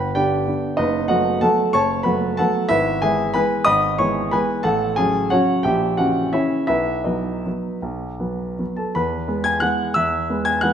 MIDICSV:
0, 0, Header, 1, 2, 480
1, 0, Start_track
1, 0, Key_signature, 4, "major"
1, 0, Tempo, 318302
1, 1199, Time_signature, 3, 2, 24, 8
1, 4560, Tempo, 326975
1, 8880, Tempo, 364742
1, 10320, Tempo, 379747
1, 12720, Tempo, 333519
1, 15268, End_track
2, 0, Start_track
2, 0, Title_t, "Grand piano"
2, 0, Program_c, 0, 0
2, 0, Note_on_c, 0, 31, 59
2, 0, Note_on_c, 0, 71, 67
2, 0, Note_on_c, 0, 79, 65
2, 0, Note_on_c, 0, 83, 88
2, 75, Control_c, 0, 64, 127
2, 204, Note_off_c, 0, 79, 0
2, 210, Note_off_c, 0, 71, 0
2, 226, Note_on_c, 0, 79, 89
2, 230, Note_off_c, 0, 31, 0
2, 230, Note_on_c, 0, 74, 64
2, 232, Note_off_c, 0, 83, 0
2, 236, Note_on_c, 0, 67, 63
2, 241, Note_on_c, 0, 50, 47
2, 249, Note_on_c, 0, 62, 44
2, 254, Note_on_c, 0, 59, 42
2, 673, Note_off_c, 0, 50, 0
2, 677, Note_off_c, 0, 62, 0
2, 680, Note_off_c, 0, 59, 0
2, 717, Note_on_c, 0, 59, 40
2, 719, Note_on_c, 0, 50, 39
2, 723, Note_on_c, 0, 62, 46
2, 743, Control_c, 0, 64, 0
2, 1135, Note_off_c, 0, 74, 0
2, 1138, Note_off_c, 0, 67, 0
2, 1150, Note_off_c, 0, 59, 0
2, 1151, Note_off_c, 0, 50, 0
2, 1153, Note_off_c, 0, 62, 0
2, 1160, Note_on_c, 0, 75, 90
2, 1169, Note_on_c, 0, 63, 68
2, 1186, Note_on_c, 0, 71, 64
2, 1188, Note_on_c, 0, 30, 61
2, 1193, Note_off_c, 0, 79, 0
2, 1464, Control_c, 0, 64, 127
2, 1626, Note_off_c, 0, 63, 0
2, 1629, Note_off_c, 0, 75, 0
2, 1631, Note_on_c, 0, 78, 85
2, 1635, Note_off_c, 0, 71, 0
2, 1651, Note_on_c, 0, 75, 67
2, 1653, Note_on_c, 0, 66, 67
2, 1655, Note_off_c, 0, 30, 0
2, 1657, Note_on_c, 0, 54, 41
2, 1658, Note_on_c, 0, 57, 43
2, 1664, Note_on_c, 0, 59, 47
2, 2108, Note_off_c, 0, 54, 0
2, 2109, Note_off_c, 0, 57, 0
2, 2112, Note_off_c, 0, 59, 0
2, 2118, Note_off_c, 0, 78, 0
2, 2120, Note_off_c, 0, 75, 0
2, 2121, Note_off_c, 0, 66, 0
2, 2129, Note_on_c, 0, 81, 92
2, 2140, Note_on_c, 0, 54, 45
2, 2140, Note_on_c, 0, 57, 44
2, 2141, Note_on_c, 0, 78, 66
2, 2146, Note_on_c, 0, 69, 66
2, 2159, Note_on_c, 0, 59, 47
2, 2189, Control_c, 0, 64, 0
2, 2585, Note_off_c, 0, 54, 0
2, 2585, Note_off_c, 0, 57, 0
2, 2596, Note_off_c, 0, 59, 0
2, 2601, Note_off_c, 0, 78, 0
2, 2603, Note_off_c, 0, 69, 0
2, 2609, Note_off_c, 0, 81, 0
2, 2611, Note_on_c, 0, 85, 104
2, 2629, Note_on_c, 0, 30, 57
2, 2629, Note_on_c, 0, 73, 72
2, 2632, Note_on_c, 0, 81, 81
2, 2960, Control_c, 0, 64, 127
2, 3065, Note_on_c, 0, 83, 80
2, 3081, Note_off_c, 0, 73, 0
2, 3083, Note_off_c, 0, 81, 0
2, 3083, Note_on_c, 0, 71, 62
2, 3094, Note_on_c, 0, 54, 47
2, 3095, Note_on_c, 0, 57, 50
2, 3097, Note_on_c, 0, 78, 55
2, 3101, Note_off_c, 0, 30, 0
2, 3107, Note_off_c, 0, 85, 0
2, 3108, Note_on_c, 0, 59, 47
2, 3546, Note_off_c, 0, 54, 0
2, 3547, Note_off_c, 0, 57, 0
2, 3553, Note_off_c, 0, 59, 0
2, 3555, Note_off_c, 0, 71, 0
2, 3563, Note_off_c, 0, 78, 0
2, 3579, Note_on_c, 0, 81, 92
2, 3582, Note_off_c, 0, 83, 0
2, 3599, Note_on_c, 0, 69, 73
2, 3604, Note_on_c, 0, 78, 72
2, 3609, Note_on_c, 0, 57, 45
2, 3618, Note_on_c, 0, 54, 45
2, 3619, Note_on_c, 0, 59, 49
2, 3626, Control_c, 0, 64, 0
2, 4035, Note_off_c, 0, 57, 0
2, 4040, Note_off_c, 0, 54, 0
2, 4040, Note_off_c, 0, 59, 0
2, 4044, Note_off_c, 0, 69, 0
2, 4046, Note_off_c, 0, 78, 0
2, 4050, Note_on_c, 0, 76, 100
2, 4059, Note_on_c, 0, 64, 70
2, 4067, Note_off_c, 0, 81, 0
2, 4076, Note_on_c, 0, 71, 72
2, 4078, Note_on_c, 0, 32, 66
2, 4340, Control_c, 0, 64, 127
2, 4515, Note_off_c, 0, 64, 0
2, 4524, Note_off_c, 0, 71, 0
2, 4540, Note_off_c, 0, 76, 0
2, 4544, Note_off_c, 0, 32, 0
2, 4550, Note_on_c, 0, 80, 93
2, 4562, Note_on_c, 0, 52, 49
2, 4562, Note_on_c, 0, 76, 69
2, 4573, Note_on_c, 0, 68, 68
2, 4579, Note_on_c, 0, 56, 48
2, 4591, Note_on_c, 0, 59, 52
2, 4998, Note_off_c, 0, 52, 0
2, 5006, Note_off_c, 0, 80, 0
2, 5007, Note_off_c, 0, 56, 0
2, 5012, Note_off_c, 0, 76, 0
2, 5014, Note_off_c, 0, 59, 0
2, 5018, Note_off_c, 0, 68, 0
2, 5018, Note_on_c, 0, 83, 91
2, 5028, Note_on_c, 0, 80, 70
2, 5042, Note_on_c, 0, 52, 43
2, 5043, Note_on_c, 0, 71, 75
2, 5046, Note_on_c, 0, 56, 46
2, 5052, Note_on_c, 0, 59, 49
2, 5064, Control_c, 0, 64, 0
2, 5469, Note_off_c, 0, 52, 0
2, 5470, Note_off_c, 0, 83, 0
2, 5471, Note_off_c, 0, 56, 0
2, 5472, Note_on_c, 0, 87, 115
2, 5474, Note_off_c, 0, 59, 0
2, 5475, Note_off_c, 0, 80, 0
2, 5484, Note_off_c, 0, 71, 0
2, 5484, Note_on_c, 0, 75, 82
2, 5492, Note_on_c, 0, 83, 88
2, 5506, Note_on_c, 0, 32, 68
2, 5778, Control_c, 0, 64, 127
2, 5930, Note_off_c, 0, 75, 0
2, 5934, Note_off_c, 0, 83, 0
2, 5958, Note_off_c, 0, 87, 0
2, 5961, Note_off_c, 0, 32, 0
2, 5970, Note_on_c, 0, 85, 93
2, 5977, Note_on_c, 0, 73, 68
2, 5990, Note_on_c, 0, 52, 50
2, 5990, Note_on_c, 0, 59, 52
2, 5991, Note_on_c, 0, 56, 45
2, 6428, Note_off_c, 0, 52, 0
2, 6428, Note_off_c, 0, 56, 0
2, 6428, Note_off_c, 0, 59, 0
2, 6436, Note_off_c, 0, 73, 0
2, 6455, Note_on_c, 0, 83, 87
2, 6466, Note_off_c, 0, 85, 0
2, 6470, Note_on_c, 0, 71, 68
2, 6473, Note_on_c, 0, 80, 71
2, 6480, Note_on_c, 0, 56, 42
2, 6488, Note_on_c, 0, 52, 47
2, 6489, Note_on_c, 0, 59, 57
2, 6491, Control_c, 0, 64, 0
2, 6906, Note_off_c, 0, 56, 0
2, 6910, Note_off_c, 0, 52, 0
2, 6911, Note_off_c, 0, 59, 0
2, 6915, Note_off_c, 0, 71, 0
2, 6917, Note_off_c, 0, 80, 0
2, 6919, Note_on_c, 0, 81, 92
2, 6928, Note_on_c, 0, 69, 77
2, 6932, Note_on_c, 0, 78, 74
2, 6941, Note_off_c, 0, 83, 0
2, 6941, Note_on_c, 0, 33, 69
2, 7214, Control_c, 0, 64, 127
2, 7382, Note_off_c, 0, 69, 0
2, 7383, Note_off_c, 0, 78, 0
2, 7404, Note_on_c, 0, 80, 90
2, 7407, Note_off_c, 0, 33, 0
2, 7411, Note_off_c, 0, 81, 0
2, 7425, Note_on_c, 0, 49, 45
2, 7425, Note_on_c, 0, 68, 72
2, 7441, Note_on_c, 0, 61, 52
2, 7443, Note_on_c, 0, 54, 46
2, 7864, Note_off_c, 0, 49, 0
2, 7873, Note_off_c, 0, 61, 0
2, 7874, Note_off_c, 0, 54, 0
2, 7878, Note_off_c, 0, 68, 0
2, 7902, Note_off_c, 0, 80, 0
2, 7905, Note_on_c, 0, 78, 89
2, 7922, Note_on_c, 0, 73, 69
2, 7923, Note_on_c, 0, 49, 44
2, 7934, Control_c, 0, 64, 0
2, 7934, Note_on_c, 0, 66, 66
2, 7948, Note_on_c, 0, 54, 43
2, 7949, Note_on_c, 0, 61, 48
2, 8352, Note_off_c, 0, 49, 0
2, 8366, Note_off_c, 0, 54, 0
2, 8366, Note_off_c, 0, 61, 0
2, 8366, Note_off_c, 0, 73, 0
2, 8372, Note_off_c, 0, 66, 0
2, 8389, Note_on_c, 0, 79, 88
2, 8391, Note_off_c, 0, 78, 0
2, 8406, Note_on_c, 0, 76, 61
2, 8416, Note_on_c, 0, 34, 63
2, 8416, Note_on_c, 0, 67, 61
2, 8685, Control_c, 0, 64, 127
2, 8851, Note_off_c, 0, 76, 0
2, 8857, Note_off_c, 0, 67, 0
2, 8875, Note_off_c, 0, 34, 0
2, 8876, Note_off_c, 0, 79, 0
2, 8890, Note_on_c, 0, 78, 86
2, 8901, Note_on_c, 0, 66, 58
2, 8913, Note_on_c, 0, 52, 43
2, 8916, Note_on_c, 0, 49, 40
2, 8916, Note_on_c, 0, 61, 50
2, 9320, Note_off_c, 0, 52, 0
2, 9321, Note_off_c, 0, 61, 0
2, 9322, Note_off_c, 0, 49, 0
2, 9327, Note_off_c, 0, 66, 0
2, 9353, Note_off_c, 0, 78, 0
2, 9354, Note_on_c, 0, 76, 75
2, 9364, Note_on_c, 0, 49, 40
2, 9365, Control_c, 0, 64, 0
2, 9365, Note_on_c, 0, 73, 58
2, 9371, Note_on_c, 0, 64, 54
2, 9372, Note_on_c, 0, 52, 36
2, 9377, Note_on_c, 0, 61, 45
2, 9787, Note_off_c, 0, 49, 0
2, 9787, Note_off_c, 0, 76, 0
2, 9792, Note_off_c, 0, 52, 0
2, 9795, Note_off_c, 0, 61, 0
2, 9797, Note_off_c, 0, 64, 0
2, 9802, Note_off_c, 0, 73, 0
2, 9807, Note_on_c, 0, 76, 89
2, 9817, Note_on_c, 0, 64, 63
2, 9834, Note_on_c, 0, 71, 61
2, 9835, Note_on_c, 0, 35, 54
2, 10110, Control_c, 0, 64, 127
2, 10280, Note_off_c, 0, 64, 0
2, 10289, Note_off_c, 0, 71, 0
2, 10298, Note_on_c, 0, 75, 58
2, 10305, Note_on_c, 0, 63, 42
2, 10309, Note_off_c, 0, 35, 0
2, 10310, Note_off_c, 0, 76, 0
2, 10311, Note_on_c, 0, 54, 41
2, 10314, Note_on_c, 0, 71, 48
2, 10323, Note_on_c, 0, 59, 41
2, 10764, Note_off_c, 0, 54, 0
2, 10771, Note_off_c, 0, 59, 0
2, 10824, Note_on_c, 0, 54, 37
2, 10833, Note_on_c, 0, 59, 42
2, 10840, Control_c, 0, 64, 0
2, 11255, Note_off_c, 0, 54, 0
2, 11260, Note_off_c, 0, 59, 0
2, 11284, Note_on_c, 0, 35, 51
2, 11591, Control_c, 0, 64, 127
2, 11756, Note_on_c, 0, 54, 36
2, 11757, Note_off_c, 0, 35, 0
2, 11758, Note_on_c, 0, 59, 43
2, 12201, Note_off_c, 0, 54, 0
2, 12202, Note_off_c, 0, 59, 0
2, 12252, Note_on_c, 0, 59, 40
2, 12255, Note_on_c, 0, 54, 34
2, 12284, Control_c, 0, 64, 0
2, 12441, Note_off_c, 0, 63, 0
2, 12446, Note_off_c, 0, 71, 0
2, 12474, Note_on_c, 0, 81, 61
2, 12487, Note_on_c, 0, 69, 45
2, 12488, Note_off_c, 0, 75, 0
2, 12668, Note_off_c, 0, 59, 0
2, 12670, Note_off_c, 0, 54, 0
2, 12697, Note_off_c, 0, 69, 0
2, 12707, Note_off_c, 0, 81, 0
2, 12707, Note_on_c, 0, 83, 82
2, 12717, Note_on_c, 0, 40, 59
2, 12724, Note_on_c, 0, 71, 65
2, 13025, Control_c, 0, 64, 127
2, 13180, Note_off_c, 0, 40, 0
2, 13182, Note_on_c, 0, 59, 53
2, 13183, Note_on_c, 0, 56, 45
2, 13389, Note_off_c, 0, 71, 0
2, 13411, Note_on_c, 0, 92, 96
2, 13429, Note_off_c, 0, 83, 0
2, 13431, Note_on_c, 0, 80, 69
2, 13623, Note_off_c, 0, 59, 0
2, 13624, Note_off_c, 0, 56, 0
2, 13644, Note_on_c, 0, 90, 89
2, 13659, Note_off_c, 0, 80, 0
2, 13660, Note_on_c, 0, 52, 42
2, 13665, Note_on_c, 0, 78, 74
2, 13667, Note_off_c, 0, 92, 0
2, 13669, Note_on_c, 0, 56, 45
2, 13684, Note_on_c, 0, 59, 47
2, 13695, Control_c, 0, 64, 0
2, 14093, Note_off_c, 0, 52, 0
2, 14098, Note_off_c, 0, 56, 0
2, 14106, Note_off_c, 0, 59, 0
2, 14110, Note_off_c, 0, 78, 0
2, 14133, Note_off_c, 0, 90, 0
2, 14135, Note_on_c, 0, 88, 101
2, 14162, Note_on_c, 0, 40, 60
2, 14163, Note_on_c, 0, 76, 74
2, 14460, Control_c, 0, 64, 127
2, 14619, Note_off_c, 0, 40, 0
2, 14647, Note_on_c, 0, 59, 51
2, 14650, Note_on_c, 0, 56, 44
2, 14829, Note_off_c, 0, 76, 0
2, 14865, Note_off_c, 0, 88, 0
2, 14865, Note_on_c, 0, 92, 96
2, 14869, Note_on_c, 0, 80, 69
2, 15081, Note_off_c, 0, 59, 0
2, 15082, Note_off_c, 0, 56, 0
2, 15097, Note_on_c, 0, 90, 92
2, 15100, Note_off_c, 0, 80, 0
2, 15115, Note_off_c, 0, 92, 0
2, 15121, Note_on_c, 0, 78, 73
2, 15125, Note_on_c, 0, 56, 45
2, 15127, Note_on_c, 0, 52, 50
2, 15131, Control_c, 0, 64, 0
2, 15139, Note_on_c, 0, 59, 50
2, 15268, Note_off_c, 0, 52, 0
2, 15268, Note_off_c, 0, 56, 0
2, 15268, Note_off_c, 0, 59, 0
2, 15268, Note_off_c, 0, 78, 0
2, 15268, Note_off_c, 0, 90, 0
2, 15268, End_track
0, 0, End_of_file